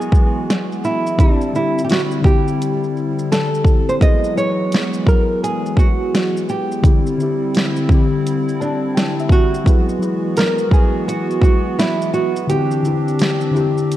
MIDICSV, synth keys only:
0, 0, Header, 1, 2, 480
1, 0, Start_track
1, 0, Tempo, 705882
1, 808, Time_signature, 4, 2, 24, 8
1, 9498, End_track
2, 0, Start_track
2, 0, Title_t, "Synth keys"
2, 0, Program_c, 0, 88
2, 0, Control_c, 0, 64, 127
2, 0, Note_on_c, 0, 54, 68
2, 0, Note_on_c, 0, 59, 78
2, 0, Note_on_c, 0, 64, 66
2, 0, Note_on_c, 0, 68, 69
2, 0, Note_on_c, 0, 71, 83
2, 218, Note_off_c, 0, 54, 0
2, 224, Note_off_c, 0, 64, 0
2, 230, Note_off_c, 0, 68, 0
2, 236, Note_off_c, 0, 59, 0
2, 799, Note_on_c, 0, 50, 67
2, 811, Note_on_c, 0, 60, 62
2, 817, Control_c, 0, 64, 0
2, 823, Note_off_c, 0, 71, 0
2, 823, Note_on_c, 0, 64, 62
2, 836, Note_on_c, 0, 67, 71
2, 918, Control_c, 0, 64, 127
2, 973, Note_off_c, 0, 50, 0
2, 979, Note_off_c, 0, 60, 0
2, 986, Note_off_c, 0, 64, 0
2, 992, Note_off_c, 0, 67, 0
2, 1041, Note_on_c, 0, 50, 72
2, 1053, Note_on_c, 0, 60, 57
2, 1065, Note_on_c, 0, 64, 60
2, 1078, Note_on_c, 0, 67, 70
2, 1355, Note_off_c, 0, 50, 0
2, 1361, Note_off_c, 0, 60, 0
2, 1367, Note_off_c, 0, 64, 0
2, 1373, Note_off_c, 0, 67, 0
2, 1505, Note_on_c, 0, 50, 81
2, 1518, Note_on_c, 0, 60, 77
2, 1530, Note_on_c, 0, 64, 68
2, 1542, Note_on_c, 0, 67, 101
2, 2137, Note_off_c, 0, 50, 0
2, 2143, Note_off_c, 0, 60, 0
2, 2149, Note_off_c, 0, 64, 0
2, 2156, Note_off_c, 0, 67, 0
2, 2714, Note_on_c, 0, 54, 73
2, 2727, Note_on_c, 0, 64, 65
2, 2736, Control_c, 0, 64, 0
2, 2739, Note_on_c, 0, 68, 69
2, 2752, Note_on_c, 0, 71, 75
2, 2839, Control_c, 0, 64, 127
2, 2891, Note_off_c, 0, 54, 0
2, 2897, Note_off_c, 0, 64, 0
2, 2903, Note_off_c, 0, 68, 0
2, 2910, Note_off_c, 0, 71, 0
2, 2954, Note_on_c, 0, 54, 72
2, 2966, Note_on_c, 0, 64, 64
2, 2978, Note_on_c, 0, 68, 64
2, 2991, Note_on_c, 0, 71, 78
2, 3271, Note_off_c, 0, 54, 0
2, 3277, Note_off_c, 0, 64, 0
2, 3283, Note_off_c, 0, 68, 0
2, 3290, Note_off_c, 0, 71, 0
2, 3440, Note_on_c, 0, 54, 78
2, 3453, Note_on_c, 0, 64, 68
2, 3465, Note_on_c, 0, 68, 70
2, 3477, Note_on_c, 0, 59, 82
2, 4064, Note_off_c, 0, 54, 0
2, 4071, Note_off_c, 0, 64, 0
2, 4077, Note_off_c, 0, 68, 0
2, 4083, Note_off_c, 0, 59, 0
2, 4637, Note_on_c, 0, 50, 72
2, 4650, Note_on_c, 0, 60, 67
2, 4657, Control_c, 0, 64, 0
2, 4662, Note_on_c, 0, 64, 70
2, 4674, Note_on_c, 0, 67, 83
2, 4771, Control_c, 0, 64, 127
2, 4812, Note_off_c, 0, 50, 0
2, 4819, Note_off_c, 0, 60, 0
2, 4825, Note_off_c, 0, 64, 0
2, 4831, Note_off_c, 0, 67, 0
2, 4880, Note_on_c, 0, 50, 69
2, 4892, Note_on_c, 0, 60, 68
2, 4905, Note_on_c, 0, 64, 71
2, 4917, Note_on_c, 0, 67, 80
2, 5194, Note_off_c, 0, 50, 0
2, 5200, Note_off_c, 0, 60, 0
2, 5207, Note_off_c, 0, 64, 0
2, 5213, Note_off_c, 0, 67, 0
2, 5364, Note_on_c, 0, 50, 80
2, 5376, Note_on_c, 0, 60, 78
2, 5388, Note_on_c, 0, 64, 74
2, 5401, Note_on_c, 0, 67, 103
2, 5848, Note_on_c, 0, 81, 69
2, 5986, Note_off_c, 0, 50, 0
2, 5992, Note_off_c, 0, 60, 0
2, 5999, Note_off_c, 0, 64, 0
2, 6005, Note_off_c, 0, 67, 0
2, 6071, Note_off_c, 0, 81, 0
2, 6083, Note_on_c, 0, 79, 72
2, 6223, Note_off_c, 0, 79, 0
2, 6256, Note_on_c, 0, 76, 72
2, 6555, Note_off_c, 0, 76, 0
2, 6555, Note_on_c, 0, 54, 63
2, 6567, Note_on_c, 0, 64, 65
2, 6577, Control_c, 0, 64, 0
2, 6578, Note_on_c, 0, 68, 69
2, 6591, Note_on_c, 0, 71, 79
2, 6708, Control_c, 0, 64, 127
2, 6731, Note_off_c, 0, 54, 0
2, 6737, Note_off_c, 0, 64, 0
2, 6743, Note_off_c, 0, 68, 0
2, 6749, Note_off_c, 0, 71, 0
2, 6792, Note_on_c, 0, 54, 72
2, 6805, Note_on_c, 0, 64, 62
2, 6816, Note_on_c, 0, 68, 64
2, 6829, Note_on_c, 0, 71, 79
2, 7110, Note_off_c, 0, 54, 0
2, 7116, Note_off_c, 0, 64, 0
2, 7122, Note_off_c, 0, 68, 0
2, 7128, Note_off_c, 0, 71, 0
2, 7267, Note_on_c, 0, 54, 74
2, 7279, Note_on_c, 0, 64, 65
2, 7291, Note_on_c, 0, 68, 63
2, 7303, Note_on_c, 0, 71, 81
2, 7898, Note_off_c, 0, 54, 0
2, 7904, Note_off_c, 0, 64, 0
2, 7910, Note_off_c, 0, 68, 0
2, 7916, Note_off_c, 0, 71, 0
2, 8480, Note_on_c, 0, 50, 66
2, 8493, Note_on_c, 0, 60, 58
2, 8497, Control_c, 0, 64, 0
2, 8504, Note_on_c, 0, 64, 63
2, 8517, Note_on_c, 0, 67, 75
2, 8613, Control_c, 0, 64, 127
2, 8654, Note_off_c, 0, 50, 0
2, 8660, Note_off_c, 0, 60, 0
2, 8666, Note_off_c, 0, 64, 0
2, 8672, Note_off_c, 0, 67, 0
2, 8720, Note_on_c, 0, 50, 68
2, 8732, Note_on_c, 0, 60, 61
2, 8745, Note_on_c, 0, 64, 64
2, 8757, Note_on_c, 0, 67, 77
2, 9034, Note_off_c, 0, 50, 0
2, 9040, Note_off_c, 0, 60, 0
2, 9046, Note_off_c, 0, 64, 0
2, 9053, Note_off_c, 0, 67, 0
2, 9185, Note_on_c, 0, 50, 80
2, 9198, Note_on_c, 0, 60, 83
2, 9210, Note_on_c, 0, 64, 76
2, 9223, Note_on_c, 0, 67, 97
2, 9498, Note_off_c, 0, 50, 0
2, 9498, Note_off_c, 0, 60, 0
2, 9498, Note_off_c, 0, 64, 0
2, 9498, Note_off_c, 0, 67, 0
2, 9498, End_track
0, 0, End_of_file